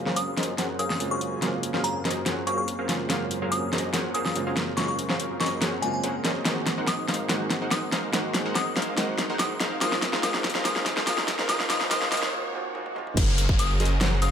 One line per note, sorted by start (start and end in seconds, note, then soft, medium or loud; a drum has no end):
0.00 6.42 F#2 medium
0.00 0.97 C#3 medium
0.00 9.78 F#3 medium
0.00 0.97 G#3 medium
0.00 0.98 A#3 medium
0.00 6.42 A#3 medium
0.00 0.98 C4 medium
0.00 9.78 C4 medium
0.00 0.99 F4 medium
0.00 6.42 F4 medium
0.00 3.07 G#4 medium
0.06 0.35 F#3 medium
0.06 0.35 C#4 medium
0.06 0.35 G#4 medium
0.06 0.35 A#4 medium
0.06 0.35 C5 medium
0.06 0.35 F5 loud
0.06 snare soft
0.16 0.28 D#6 medium
0.16 closed hi-hat medium
0.37 0.55 F#3 medium
0.37 0.55 C#4 medium
0.37 0.55 G#4 medium
0.37 0.55 A#4 medium
0.37 0.55 C5 medium
0.37 0.55 D#5 medium
0.37 snare soft
0.37 closed hi-hat soft
0.43 closed hi-hat medium
0.58 0.77 F#3 medium
0.58 0.77 C#4 medium
0.58 0.77 G#4 medium
0.58 0.77 A#4 medium
0.58 0.77 C5 medium
0.58 0.77 F#5 medium
0.58 snare soft
0.58 closed hi-hat medium
0.79 1.09 F#3 medium
0.79 1.09 C#4 medium
0.79 1.09 G#4 medium
0.79 1.09 A#4 medium
0.79 1.09 C5 medium
0.79 1.09 F5 medium
0.79 0.86 D#6 medium
0.79 closed hi-hat medium
0.90 0.97 D#6 medium
0.90 snare soft
0.99 1.39 C#3 medium
0.99 1.40 G#3 medium
0.99 1.40 A#3 medium
0.99 1.40 C4 medium
0.99 1.40 F4 loud
0.99 closed hi-hat medium
1.11 1.40 F#3 medium
1.11 1.40 C#4 medium
1.11 1.40 G#4 medium
1.11 1.40 A#4 medium
1.11 1.40 C5 medium
1.11 1.40 F5 medium
1.11 1.21 C#6 medium
1.21 closed hi-hat medium
1.40 2.86 C#3 medium
1.40 1.72 F#3 medium
1.40 2.86 G#3 medium
1.40 2.87 A#3 medium
1.40 2.87 C4 medium
1.40 1.72 C#4 medium
1.40 2.88 F4 medium
1.40 1.72 G#4 medium
1.40 1.72 A#4 medium
1.40 1.72 C5 medium
1.40 1.72 F5 medium
1.40 snare soft
1.40 closed hi-hat medium
1.63 closed hi-hat medium
1.74 2.03 F#3 medium
1.74 2.03 C#4 medium
1.74 2.03 G#4 medium
1.74 2.03 A#4 medium
1.74 2.03 C5 medium
1.74 2.03 F5 loud
1.74 snare soft
1.84 1.95 A#5 medium
1.84 closed hi-hat medium
2.05 2.23 F#3 medium
2.05 2.23 C#4 medium
2.05 2.23 G#4 medium
2.05 2.23 A#4 medium
2.05 2.23 C5 medium
2.05 2.23 D#5 loud
2.05 snare medium
2.05 closed hi-hat soft
2.11 closed hi-hat medium
2.26 2.45 F#3 medium
2.26 2.45 C#4 medium
2.26 2.45 G#4 medium
2.26 2.45 A#4 medium
2.26 2.45 C5 medium
2.26 2.45 F#5 medium
2.26 snare medium
2.26 closed hi-hat medium
2.47 2.76 F#3 medium
2.47 2.76 C#4 medium
2.47 2.76 G#4 medium
2.47 2.76 A#4 medium
2.47 2.76 C5 medium
2.47 2.76 F5 medium
2.47 2.54 C#6 medium
2.47 closed hi-hat medium
2.58 2.64 C#6 medium
2.68 closed hi-hat medium
2.79 3.08 F#3 medium
2.79 3.08 C#4 medium
2.79 3.08 G#4 medium
2.79 3.08 A#4 medium
2.79 3.08 C5 medium
2.79 3.08 F5 medium
2.88 3.06 C#3 medium
2.88 3.07 G#3 medium
2.88 3.08 A#3 medium
2.88 3.08 C4 medium
2.88 3.08 F4 medium
2.88 snare medium
2.88 closed hi-hat medium
3.08 4.32 C#3 medium
3.08 3.39 F#3 medium
3.08 4.33 G#3 medium
3.08 4.33 A#3 medium
3.08 4.34 C4 medium
3.08 3.39 C#4 medium
3.08 4.34 F4 loud
3.08 3.39 G#4 medium
3.08 3.39 A#4 medium
3.08 6.42 A#4 medium
3.08 3.39 C5 medium
3.08 3.39 F5 medium
3.08 snare medium
3.08 closed hi-hat medium
3.31 closed hi-hat medium
3.42 3.71 F#3 medium
3.42 3.71 C#4 medium
3.42 3.71 G#4 medium
3.42 3.71 A#4 medium
3.42 3.71 C5 medium
3.42 3.71 F5 medium
3.52 3.63 D#6 medium
3.52 closed hi-hat medium
3.73 3.91 F#3 medium
3.73 3.91 C#4 medium
3.73 3.91 G#4 medium
3.73 3.91 A#4 medium
3.73 3.91 C5 medium
3.73 3.91 D#5 loud
3.73 snare medium
3.73 closed hi-hat soft
3.78 closed hi-hat medium
3.94 4.12 F#3 medium
3.94 4.12 C#4 medium
3.94 4.13 G#4 medium
3.94 4.13 A#4 medium
3.94 4.13 C5 medium
3.94 4.12 F#5 loud
3.94 snare medium
3.94 closed hi-hat medium
4.14 4.44 F#3 medium
4.14 4.44 C#4 medium
4.14 4.44 G#4 medium
4.14 4.44 A#4 medium
4.14 4.44 C5 medium
4.14 4.44 F5 medium
4.14 4.22 D#6 medium
4.14 closed hi-hat medium
4.25 4.32 D#6 medium
4.25 snare medium
4.35 4.74 C#3 medium
4.35 4.75 G#3 medium
4.35 4.75 A#3 medium
4.35 4.76 C4 medium
4.35 4.76 F4 medium
4.35 closed hi-hat medium
4.47 4.75 F#3 medium
4.47 4.75 C#4 medium
4.47 4.75 G#4 medium
4.47 4.75 A#4 medium
4.47 4.75 C5 medium
4.47 4.75 F5 medium
4.57 snare medium
4.57 closed hi-hat medium
4.76 5.79 C#3 medium
4.76 5.07 F#3 medium
4.76 5.80 G#3 medium
4.76 5.81 A#3 medium
4.76 5.81 C4 medium
4.76 5.07 C#4 medium
4.76 5.07 G#4 medium
4.76 5.07 A#4 medium
4.76 5.07 C5 medium
4.76 5.07 F5 medium
4.76 4.84 C#6 medium
4.76 snare medium
4.76 closed hi-hat medium
4.80 5.82 F4 medium
4.88 4.95 C#6 medium
4.99 closed hi-hat medium
5.10 5.39 F#3 medium
5.10 5.38 C#4 medium
5.10 5.38 G#4 medium
5.10 5.38 A#4 medium
5.10 5.38 C5 medium
5.10 5.39 F5 loud
5.10 snare medium
5.20 closed hi-hat medium
5.40 5.59 F#3 medium
5.40 5.59 C#4 medium
5.40 5.59 G#4 medium
5.40 5.59 A#4 medium
5.40 5.59 C5 medium
5.40 5.59 D#5 loud
5.40 5.52 C#6 medium
5.40 snare medium
5.40 closed hi-hat soft
5.46 closed hi-hat medium
5.62 5.80 F#3 medium
5.62 5.80 C#4 medium
5.62 5.80 G#4 medium
5.62 5.80 A#4 medium
5.62 5.81 C5 medium
5.62 5.80 F#5 medium
5.62 snare medium
5.62 closed hi-hat medium
5.81 6.42 C#3 medium
5.81 6.43 G#3 medium
5.81 6.43 A#3 medium
5.81 6.44 C4 medium
5.81 5.90 G#5 medium
5.81 closed hi-hat medium
5.85 6.44 F4 loud
5.94 6.00 G#5 medium
6.04 6.16 F#3 medium
6.04 6.16 C#4 medium
6.04 6.16 G#4 medium
6.04 6.16 A#4 medium
6.04 6.16 C5 medium
6.04 6.16 F#5 medium
6.04 closed hi-hat medium
6.25 6.43 F#3 medium
6.25 6.43 C#4 medium
6.25 6.43 G#4 medium
6.25 6.43 A#4 medium
6.25 6.43 C5 medium
6.25 6.43 D#5 medium
6.25 snare medium
6.25 closed hi-hat medium
6.44 9.78 G#2 medium
6.44 7.26 D#3 medium
6.44 7.27 G#3 medium
6.44 6.75 G#3 medium
6.44 7.28 A#3 medium
6.44 7.29 C4 medium
6.44 6.75 D#4 medium
6.44 12.29 G#4 loud
6.44 6.75 A#4 medium
6.44 6.75 C5 medium
6.44 6.75 F#5 medium
6.44 snare medium
6.44 closed hi-hat medium
6.44 riser medium
6.48 7.29 F#4 medium
6.67 snare medium
6.67 closed hi-hat medium
6.78 7.06 G#3 medium
6.78 7.06 D#4 medium
6.78 7.06 A#4 medium
6.78 7.06 C5 medium
6.78 7.06 F#5 medium
6.87 6.99 D#6 medium
6.87 snare medium
6.87 closed hi-hat medium
7.08 7.27 G#3 medium
7.08 7.27 D#4 medium
7.08 7.27 A#4 medium
7.08 7.27 C5 medium
7.08 7.27 F5 medium
7.08 snare medium
7.08 closed hi-hat soft
7.14 closed hi-hat medium
7.28 8.10 D#3 medium
7.28 8.11 G#3 medium
7.28 7.59 G#3 medium
7.28 8.12 A#3 medium
7.28 8.12 C4 medium
7.28 7.59 D#4 medium
7.28 8.13 F#4 medium
7.28 7.59 A#4 medium
7.28 7.59 C5 medium
7.28 7.59 F#5 medium
7.28 snare medium
7.28 closed hi-hat medium
7.50 snare medium
7.50 closed hi-hat medium
7.62 7.90 G#3 medium
7.62 7.90 D#4 medium
7.62 7.90 A#4 medium
7.62 7.90 C5 medium
7.62 7.90 F#5 medium
7.71 7.83 D#6 medium
7.71 snare medium
7.71 closed hi-hat medium
7.92 8.11 G#3 medium
7.92 8.11 D#4 medium
7.92 8.11 A#4 medium
7.92 8.11 C5 medium
7.92 8.11 F5 medium
7.92 snare medium
7.92 closed hi-hat medium
8.11 8.94 D#3 medium
8.11 8.95 G#3 medium
8.11 8.43 G#3 medium
8.11 8.96 A#3 medium
8.11 8.96 C4 medium
8.11 8.43 D#4 medium
8.11 8.97 F#4 medium
8.11 8.43 A#4 medium
8.11 8.43 C5 medium
8.11 8.43 F#5 medium
8.11 snare medium
8.11 closed hi-hat medium
8.34 snare medium
8.34 closed hi-hat medium
8.46 8.74 G#3 medium
8.46 8.74 D#4 medium
8.46 8.74 A#4 medium
8.46 8.74 C5 medium
8.46 8.74 F#5 medium
8.55 8.67 D#6 medium
8.55 snare medium
8.55 closed hi-hat medium
8.77 8.95 G#3 medium
8.77 8.95 D#4 medium
8.77 8.95 A#4 medium
8.77 8.95 C5 medium
8.77 8.95 F5 loud
8.77 snare medium
8.77 closed hi-hat soft
8.82 closed hi-hat medium
8.95 9.78 D#3 medium
8.95 9.79 G#3 medium
8.95 9.27 G#3 medium
8.95 9.80 A#3 medium
8.95 9.80 C4 medium
8.95 9.27 D#4 medium
8.95 9.27 A#4 medium
8.95 9.27 C5 medium
8.95 9.27 F#5 medium
8.95 snare medium
8.95 closed hi-hat medium
8.99 9.81 F#4 medium
9.19 snare medium
9.19 closed hi-hat medium
9.30 9.58 G#3 medium
9.30 9.58 D#4 medium
9.30 9.58 A#4 medium
9.30 9.58 C5 medium
9.30 9.58 F#5 medium
9.39 9.51 D#6 medium
9.39 snare medium
9.39 closed hi-hat medium
9.60 9.79 G#3 medium
9.60 9.79 D#4 medium
9.60 9.79 A#4 medium
9.60 9.79 C5 medium
9.60 9.79 F5 loud
9.60 snare medium
9.60 closed hi-hat medium
9.79 12.31 F2 medium
9.79 10.20 D#3 medium
9.79 12.31 F3 medium
9.79 10.21 G#3 medium
9.79 10.11 G#3 medium
9.79 10.22 A#3 medium
9.79 10.22 C4 medium
9.79 12.31 D#4 medium
9.79 10.11 D#4 medium
9.79 10.11 A#4 medium
9.79 10.11 C5 medium
9.79 10.11 F5 medium
9.79 9.92 D#6 medium
9.79 snare medium
9.79 closed hi-hat medium
9.83 10.23 F4 loud
9.92 snare medium
10.02 snare loud
10.02 closed hi-hat medium
10.13 10.22 G#3 medium
10.13 10.22 D#4 medium
10.13 10.22 A#4 medium
10.13 10.22 C5 medium
10.13 10.22 F5 loud
10.13 snare medium
10.21 10.62 D#3 medium
10.21 10.63 G#3 medium
10.21 10.53 G#3 medium
10.21 10.64 A#3 medium
10.21 10.64 C4 medium
10.21 10.53 D#4 medium
10.21 10.65 F4 loud
10.21 10.53 A#4 medium
10.21 10.53 C5 medium
10.21 10.53 F5 medium
10.21 10.34 D#6 medium
10.21 snare medium
10.21 closed hi-hat medium
10.34 snare medium
10.44 snare loud
10.44 closed hi-hat medium
10.50 closed hi-hat medium
10.55 10.64 G#3 medium
10.55 10.64 D#4 medium
10.55 10.64 A#4 medium
10.55 10.64 C5 medium
10.55 10.64 F5 loud
10.55 snare medium
10.63 11.04 D#3 medium
10.63 11.05 G#3 medium
10.63 10.95 G#3 medium
10.63 11.06 A#3 medium
10.63 11.06 C4 medium
10.63 10.95 D#4 medium
10.63 10.95 A#4 medium
10.63 10.95 C5 medium
10.63 10.95 F5 medium
10.63 10.76 D#6 medium
10.63 snare loud
10.63 closed hi-hat medium
10.67 11.07 F4 medium
10.76 snare medium
10.86 snare loud
10.86 closed hi-hat medium
10.97 11.06 G#3 medium
10.97 11.06 D#4 medium
10.97 11.06 A#4 medium
10.97 11.06 C5 medium
10.97 11.06 F5 medium
10.97 snare medium
11.05 11.45 D#3 medium
11.05 11.46 G#3 medium
11.05 11.36 G#3 medium
11.05 11.47 A#3 medium
11.05 11.48 C4 medium
11.05 11.36 D#4 medium
11.05 11.36 A#4 medium
11.05 11.36 C5 medium
11.05 11.36 F5 medium
11.05 11.18 D#6 medium
11.05 snare loud
11.05 closed hi-hat medium
11.09 11.49 F4 loud
11.18 snare medium
11.28 snare loud
11.28 closed hi-hat medium
11.39 11.48 G#3 medium
11.39 11.48 D#4 medium
11.39 11.48 A#4 medium
11.39 11.48 C5 medium
11.39 11.48 F5 medium
11.39 snare medium
11.47 11.67 D#3 medium
11.47 11.68 G#3 medium
11.47 11.69 G#3 medium
11.47 11.68 A#3 medium
11.47 11.69 C4 medium
11.47 11.69 D#4 medium
11.47 11.69 F4 loud
11.47 11.69 A#4 medium
11.47 11.69 C5 medium
11.47 11.69 F5 medium
11.47 11.60 D#6 medium
11.47 snare medium
11.47 closed hi-hat medium
11.60 snare medium
11.68 11.88 D#3 loud
11.68 11.89 G#3 medium
11.68 11.90 G#3 medium
11.68 11.89 A#3 medium
11.68 11.90 C4 medium
11.68 11.90 D#4 medium
11.68 11.91 F4 loud
11.68 11.90 A#4 medium
11.68 11.90 C5 medium
11.68 11.90 F5 medium
11.68 11.81 D#6 medium
11.68 snare loud
11.68 closed hi-hat medium
11.81 snare medium
11.89 12.09 D#3 medium
11.89 12.10 G#3 medium
11.89 12.11 G#3 medium
11.89 12.11 A#3 medium
11.89 12.11 C4 medium
11.89 12.11 D#4 medium
11.89 12.12 F4 loud
11.89 12.11 A#4 medium
11.89 12.11 C5 medium
11.89 12.11 F5 medium
11.89 12.02 D#6 loud
11.89 snare loud
11.89 closed hi-hat medium
12.02 snare medium
12.10 12.30 D#3 medium
12.10 12.31 G#3 medium
12.10 12.32 G#3 medium
12.10 12.32 A#3 medium
12.10 12.32 C4 medium
12.10 12.32 D#4 medium
12.10 12.32 A#4 medium
12.10 12.32 C5 medium
12.10 12.32 F5 medium
12.10 12.23 D#6 loud
12.10 snare loud
12.10 closed hi-hat medium
12.14 12.33 F4 loud
12.14 closed hi-hat medium
12.23 snare medium
12.31 12.50 D#3 loud
12.31 12.51 G#3 medium
12.31 12.52 A#3 medium
12.31 12.53 C4 medium
12.31 swell medium
12.35 12.54 F4 loud
12.52 12.72 D#3 loud
12.52 12.73 G#3 medium
12.52 12.73 A#3 medium
12.52 12.74 C4 medium
12.56 12.74 F4 loud
12.73 12.93 D#3 medium
12.73 12.94 G#3 medium
12.73 12.94 A#3 medium
12.73 12.95 C4 medium
12.73 high tom medium
12.77 12.95 F4 loud
12.86 high tom medium
12.94 13.14 D#3 medium
12.94 13.15 G#3 medium
12.94 13.15 A#3 medium
12.94 13.16 C4 medium
12.94 13.16 F4 loud
12.94 mid tom medium
13.07 mid tom medium
13.17 14.31 F#1 loud
13.17 13.46 F#3 medium
13.17 13.46 C#4 medium
13.17 13.46 G#4 medium
13.17 13.46 A#4 medium
13.17 13.46 C5 medium
13.17 13.46 F5 medium
13.17 kick loud
13.17 closed hi-hat medium
13.17 crash loud
13.17 downlifter medium
13.38 closed hi-hat medium
13.49 13.78 F#3 medium
13.49 13.78 C#4 medium
13.49 13.78 G#4 medium
13.49 13.78 A#4 medium
13.49 13.78 C5 medium
13.49 13.78 F5 loud
13.49 kick loud
13.59 13.70 D#6 medium
13.59 closed hi-hat medium
13.80 13.98 F#3 medium
13.80 13.98 C#4 medium
13.80 13.98 G#4 medium
13.80 13.98 A#4 medium
13.80 13.98 C5 medium
13.80 13.98 D#5 loud
13.80 closed hi-hat medium
13.85 closed hi-hat medium
14.01 14.20 F#3 medium
14.01 14.20 C#4 medium
14.01 14.20 G#4 medium
14.01 14.20 A#4 medium
14.01 14.20 C5 medium
14.01 14.20 F#5 loud
14.01 snare loud
14.01 closed hi-hat medium
14.22 14.31 F#3 medium
14.22 14.31 C#4 medium
14.22 14.31 G#4 medium
14.22 14.31 A#4 medium
14.22 14.31 C5 medium
14.22 14.31 F5 medium
14.22 14.29 D#6 medium
14.22 closed hi-hat medium